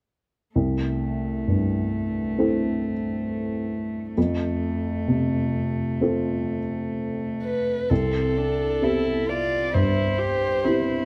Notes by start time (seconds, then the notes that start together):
0.55 C2 A3
1.48 G2
2.38 C4 E4 A4
4.17 F2 A3
5.08 C3
6.01 C4 F4 A4
7.43 B4
7.90 C2 C4 A4
8.37 D4
8.82 C4 E4 G4 E5
9.28 F4 D5
9.74 G2 E4 C5
10.18 G4
10.65 C4 E4 G4